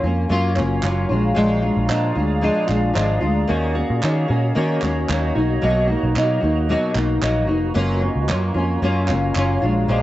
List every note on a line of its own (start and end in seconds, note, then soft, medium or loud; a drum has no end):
0.00 0.25 F2 medium
0.00 0.30 F4 medium
0.00 1.09 F#4 medium
0.00 1.09 C#5 medium
0.00 3.46 F5 medium
0.00 3.46 A#5 medium
0.06 0.29 A#3 soft
0.06 0.30 C#4 medium
0.30 0.59 F#2 loud
0.30 0.56 F#3 medium
0.30 0.57 A#3 medium
0.30 0.56 C#4 medium
0.30 0.54 F4 medium
0.55 0.78 F#1 medium
0.55 0.82 A#3 medium
0.55 0.83 C#4 medium
0.55 0.83 F4 medium
0.55 clap medium
0.82 1.05 F#1 loud
0.82 1.09 F#3 medium
0.82 1.10 A#3 medium
0.82 1.10 C#4 medium
0.82 1.08 F4 medium
0.82 clap medium
1.09 1.32 A#1 loud
1.09 1.35 G#3 soft
1.09 1.35 D4 soft
1.09 1.36 F4 medium
1.09 3.47 G#4 medium
1.09 3.47 D5 medium
1.34 1.69 A#1 loud
1.34 1.62 A#2 medium
1.34 1.62 F3 medium
1.34 1.63 G#3 medium
1.34 1.63 D4 loud
1.34 1.61 F4 medium
1.62 1.88 G#3 soft
1.62 1.89 D4 medium
1.62 1.89 F4 medium
1.77 1.87 A#1 loud
1.88 2.11 A#2 loud
1.88 2.15 F3 medium
1.88 2.16 G#3 medium
1.88 2.15 D4 medium
1.88 2.14 F4 medium
1.88 clap medium
2.15 2.48 D2 medium
2.15 2.41 G#3 soft
2.15 2.42 D4 soft
2.15 2.42 F4 medium
2.41 2.69 A#2 medium
2.41 2.69 F3 medium
2.41 2.69 G#3 medium
2.41 2.67 D4 medium
2.41 2.66 F4 medium
2.67 2.91 A#1 medium
2.67 2.94 G#3 soft
2.67 2.95 D4 medium
2.67 2.95 F4 medium
2.67 clap medium
2.94 3.17 G#1 medium
2.94 3.21 F3 medium
2.94 3.22 G#3 medium
2.94 3.21 D4 medium
2.94 3.20 F4 medium
2.94 clap medium
3.21 3.44 D2 medium
3.21 3.48 G#3 soft
3.21 3.49 D4 medium
3.21 3.48 F4 medium
3.47 3.82 D#2 loud
3.47 3.75 D#3 medium
3.47 3.76 A#3 medium
3.47 3.75 C#4 loud
3.47 5.34 F#4 medium
3.47 3.74 F#4 loud
3.47 5.33 C#5 medium
3.47 7.71 D#5 medium
3.47 10.03 A#5 loud
3.75 4.01 A#3 soft
3.75 4.03 C#4 medium
3.75 4.02 F#4 medium
3.90 4.00 A#2 medium
4.01 4.29 D#3 medium
4.01 4.25 D#3 loud
4.01 4.29 A#3 medium
4.01 4.29 C#4 medium
4.01 4.27 F#4 medium
4.01 clap medium
4.28 4.51 A#2 loud
4.28 4.55 A#3 soft
4.28 4.56 C#4 medium
4.28 4.55 F#4 medium
4.55 4.82 D#3 medium
4.55 4.78 D#3 loud
4.55 4.83 A#3 medium
4.55 4.83 C#4 medium
4.55 4.80 F#4 medium
4.81 5.04 D#2 medium
4.81 5.09 A#3 medium
4.81 5.10 C#4 medium
4.81 5.09 F#4 medium
4.81 clap medium
5.09 5.31 D#2 medium
5.09 5.36 D#3 medium
5.09 5.36 A#3 medium
5.09 5.36 C#4 medium
5.09 5.34 F#4 medium
5.09 clap medium
5.35 5.57 B1 loud
5.35 5.61 A#3 medium
5.35 5.62 D#4 medium
5.35 5.62 F#4 medium
5.35 9.58 F#4 medium
5.35 7.73 B4 medium
5.61 5.95 B1 medium
5.61 5.89 B2 medium
5.61 5.89 F#3 medium
5.61 5.89 A#3 medium
5.61 5.88 D#4 loud
5.61 5.86 F#4 medium
5.88 6.16 D#4 soft
5.88 6.15 F#4 medium
5.92 6.15 A#3 medium
6.03 6.14 B1 medium
6.15 6.38 B2 loud
6.15 6.42 F#3 medium
6.15 6.43 A#3 medium
6.15 6.41 D#4 medium
6.15 6.40 F#4 medium
6.15 clap medium
6.41 6.75 D#2 medium
6.41 6.69 A#3 soft
6.41 6.69 D#4 medium
6.41 6.68 F#4 medium
6.69 6.96 B2 medium
6.69 6.96 F#3 medium
6.69 6.96 A#3 medium
6.69 6.95 D#4 medium
6.69 6.93 F#4 medium
6.94 7.17 B1 loud
6.94 7.22 A#3 medium
6.94 7.22 D#4 medium
6.94 7.22 F#4 medium
6.94 clap medium
7.21 7.49 A#1 medium
7.21 7.48 F#3 medium
7.21 7.49 A#3 medium
7.21 7.47 D#4 medium
7.21 7.46 F#4 medium
7.21 clap medium
7.47 7.70 F1 medium
7.47 7.74 A#3 soft
7.47 7.75 D#4 medium
7.47 7.74 F#4 medium
7.74 8.08 F#1 loud
7.74 8.01 F#3 medium
7.74 8.02 A#3 medium
7.74 8.02 C#4 medium
7.74 8.00 F4 medium
7.74 9.59 C#5 medium
7.74 10.03 F5 medium
8.01 8.27 A#3 soft
8.01 8.29 C#4 soft
8.01 8.28 F4 medium
8.16 8.30 C#2 medium
8.28 8.50 F#2 medium
8.28 8.55 F#3 medium
8.28 8.55 A#3 medium
8.28 8.55 C#4 medium
8.28 8.53 F4 medium
8.28 clap medium
8.54 8.76 F2 medium
8.54 8.83 C#4 medium
8.54 8.81 F4 medium
8.58 8.81 A#3 medium
8.82 9.11 F#2 loud
8.82 9.09 F#3 medium
8.82 9.09 A#3 medium
8.82 9.09 C#4 medium
8.82 9.07 F4 medium
9.08 9.30 F#1 medium
9.08 9.35 A#3 soft
9.08 9.36 C#4 medium
9.08 9.35 F4 medium
9.08 clap medium
9.35 9.57 F#1 loud
9.35 9.62 F#3 medium
9.35 9.63 A#3 medium
9.35 9.63 C#4 medium
9.35 9.61 F4 medium
9.35 clap medium
9.62 9.84 A#1 loud
9.62 9.88 G#3 soft
9.62 9.89 D4 soft
9.62 9.89 F4 medium
9.88 10.03 A#1 loud
9.88 10.03 A#2 medium
9.88 10.03 F3 medium
9.88 10.03 G#3 medium
9.88 10.03 D4 medium
9.88 10.03 F4 medium